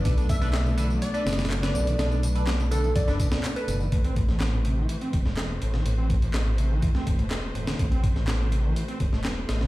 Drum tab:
HH |x-x-x---x---x---x-x-xxxxx-x---x-|x---x-x-x---x---x---x---x-x-x---|x-x-x---x---x---x-x-x---x---x---|x---x-x-x---x---x---x-x-x---x-x-|
TB |x-x-x-x-x-x-x-x-x-x-x-x-x---x-x-|x-x-x-x-x-x-x-x-x-x-x-x-x-x-x-x-|--------------------------------|--------------------------------|
CP |--------x---------------x-------|--------x---------------x-------|--------x---------------x-------|--------x---------------x-------|
SD |------o-o-----------oooo--o-----|o-------o---------o---o---------|------o-o-------------o-o-----o-|--------o---------o-----o-----o-|
BD |o---o---------------------------|----------------o---o-----------|o---o---------------o-----------|----o-----------o---o-----------|

HH |x-x-x---x---x---x-x-x---x---x---|
TB |--------------------------------|
CP |--------x---------------x-------|
SD |------o-o-------------o-o---o-o-|
BD |o---o---------------o-----------|